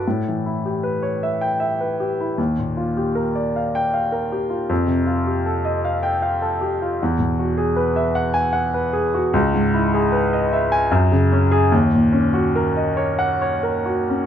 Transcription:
0.08 A2
0.28 E3
0.46 E4
0.66 G4
0.83 B4
1.03 C#5
1.23 E5
1.41 G5
1.60 E5
1.80 B4
2.00 G4
2.20 E4
2.38 D#2
2.58 A#2
2.77 F4
2.97 G4
3.15 A#4
3.35 D5
3.56 F5
3.75 G5
3.94 F5
4.12 A#4
4.32 G4
4.50 F4
4.69 F2
4.86 C3
5.07 F4
5.27 G4
5.46 A4
5.65 D#5
5.85 F5
6.03 G5
6.22 F5
6.42 A4
6.61 G4
6.82 F4
7.03 E2
7.19 B2
7.39 F#4
7.57 G#4
7.76 B4
7.96 E5
8.15 F#5
8.34 G#5
8.53 F#5
8.74 B4
8.93 G#4
9.14 F#4
9.33 C#2
9.54 G#2
9.74 E4
9.94 G#4
10.12 B4
10.33 D#5
10.53 E5
10.72 G#5
10.91 F#2
11.12 C#3
11.32 C#4
11.52 G#4
11.72 D#2
11.93 A#2
12.12 C#4
12.34 F#4
12.56 A#4
12.77 D#5
12.97 C#5
13.19 F#5
13.42 C#5
13.63 A#4
13.86 F#4
14.09 C#4

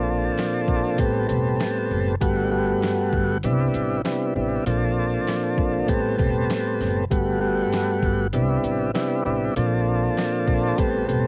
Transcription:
Already playing: A#1 A#2 F3 C4 D4 A4
0.38 snare, closed hi-hat
0.68 A#1, kick
0.98 A1 A2 G3 B3 C4 A4, kick, closed hi-hat
1.27 E1 A2 G3 B3 C4 A4, closed hi-hat
1.60 snare, closed hi-hat
1.91 F#1
2.20 G1 G2 G3 A3 B3 F#4, kick, closed hi-hat
2.50 G2 G3 A3 B3 F#4
2.82 snare, closed hi-hat
3.13 G1, kick
3.43 C2 C3 G3 B3 D4 E4, closed hi-hat
3.74 A1, closed hi-hat
4.04 C3 G3 B3 D4 E4, snare, closed hi-hat
4.35 A1 C3 G3 B3 D4 E4
4.66 A#1 A#2 F3 C4 D4 A4, closed hi-hat
5.27 snare, closed hi-hat
5.58 A#1, kick
5.88 A1 A2 G3 B3 C4 A4, kick, closed hi-hat
6.17 E1 A2 G3 B3 C4 A4, kick, closed hi-hat
6.50 snare, closed hi-hat
6.81 F#1, snare, closed hi-hat
7.10 G1 G2 G3 A3 B3 F#4, kick, closed hi-hat
7.40 G2 G3 A3 B3 F#4
7.72 snare, closed hi-hat
8.03 G1, kick
8.33 C2 C3 G3 B3 D4 E4, closed hi-hat
8.64 A1, closed hi-hat
8.94 C3 G3 B3 D4 E4, snare, closed hi-hat
9.25 A1 C3 G3 B3 D4 E4
9.56 A#1 A#2 F3 C4 D4 A4, closed hi-hat
10.17 snare, closed hi-hat
10.48 A#1, kick
10.78 A1 A2 G3 B3 C4 A4, kick, closed hi-hat
11.07 E1 A2 G3 B3 C4 A4, closed hi-hat

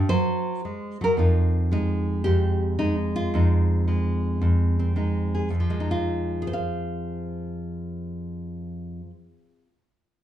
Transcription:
0.09 F#3 C5
0.65 G#3
1.01 F#3 A#4
1.17 F2 C4 D#4 F4
1.72 G#3 D#4
2.24 F2 G4
2.79 G#3 D#4
3.16 F4
3.34 F2 C4 D#4
3.88 G#3
4.41 F2
4.79 C4
4.96 G#3 D#4
5.34 G#4
5.50 F2
5.60 F3
5.70 G#3
5.80 D#4
5.91 F4
6.42 G#4
6.47 C5
6.53 F5

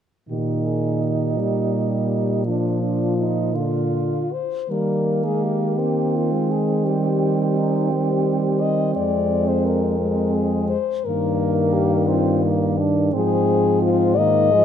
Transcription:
0.29 A#2 D#3 D#4 G4
0.66 G#4
1.03 G4
1.39 G3
2.46 F3 D4 F4
2.83 D4
3.18 D#4
3.54 D3 F4
4.33 C5
4.70 D#3 G3 A#3 A#4
5.25 G#3 G#4
5.43 G4
5.78 A#3 C4
6.16 F4
6.32 G#3
6.51 G#4
6.85 G3 G4
7.58 D#4
7.91 G3 G4
8.61 D#5
8.96 F2 G#3 D5
9.48 C5
9.66 A#4
10.00 G#3
10.35 G#4
10.69 C5
11.05 G2 D#3 A#3 A#4
11.74 G4
12.09 C4 F4
12.43 A#3
12.78 D4
13.13 G#2 F3 C4 G#4
13.82 F4
14.16 D#3 A#3 D#5
14.52 F3 G#3

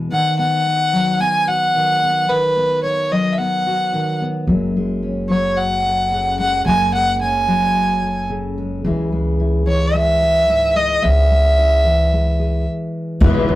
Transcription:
Already playing: E2 B2 E3 G#3 B3
0.11 D#3 F#5
0.39 B3 F#5
0.66 D#4
0.93 F#3
1.20 B3 G#5
1.48 F#4 F#5
1.75 D#3
2.02 B3
2.29 D#3 B4
2.57 B3
2.84 D#4 C#5
3.11 F#3 D#5
3.32 E5
3.38 B3 F#5
3.67 F#4
3.93 D#3
4.22 B3
4.47 F#1 F#2 F#3 G#3 C#4
4.76 G#3
5.03 C#4
5.29 F#3 C#5
5.57 F#5
5.85 A4
6.12 C#3
6.39 G#3 F#5
6.66 F#1 F#2 G#5
6.94 G#3 F#5
7.21 C#4 G#5
7.48 F#3
8.03 A4
8.29 C#3
8.58 G#3
8.84 C#2 C#3 E3 G#3 E4 G#4
9.12 G#3
9.40 E4
9.66 E3 C#5
9.94 G#3 E5
10.22 G#4
10.48 G#2
10.76 G#3 D#5
11.02 C#2 C#3 E5
11.31 G#3
11.58 E4
11.84 E3
12.13 G#3
12.39 G#4
13.20 E2 E3 G#3 B3 E4 B4, kick, crash
13.49 E2

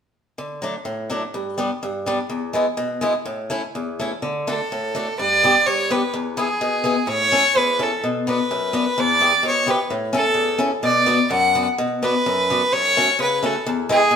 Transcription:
0.38 D3
0.62 F#3 A3 D4
0.85 A2
1.10 F#3 A3 D4
1.34 G2
1.58 G3 B3 D4
1.83 G2
2.06 G3 B3 D4
2.30 E2
2.53 G#3 B3 E4
2.77 B2
3.01 G#3 B3 E4
3.26 A2
3.50 A3 C#4 E4
3.75 E2
4.00 A3 C#4 E4
4.22 D3
4.47 A3 D4 F#4 A4
4.72 A2
4.95 A3 D4 F#4
5.19 G2 D5
5.44 B3 D4 G4
5.66 G2 C#5
5.90 B3 D4 G4 B4
6.14 E2
6.37 B3 E4 G#4
6.61 B2
6.84 B3 E4 G#4
7.07 A2 C#5
7.32 C#4 E4 A4
7.55 E2 B4
7.79 C#4 E4 A4
8.04 B2
8.27 B3 D4 F#4 B4
8.51 F#2
8.73 B3 D4 F#4
8.98 E2 D5
9.21 B3 E4 G4
9.43 B2
9.47 C#5
9.66 B3 E4 G4
9.70 B4
9.90 A2
10.13 C#4 E4 A4
10.34 E2
10.58 C#4 E4 A4
10.83 B2 D5
11.06 B3 D4 F#4
11.31 F#2 F#5
11.55 B3 D4 F#4
11.78 B2
12.03 B3 D4 F#4 B4
12.26 F#2
12.50 B3 D4 F#4
12.73 F#2 C#5
12.97 A3 C#4 F#4
13.19 C#3 B4
13.43 A3 C#4 F#4 A4
13.66 E2
13.89 G#3 B3 E4 G#4
14.11 B2

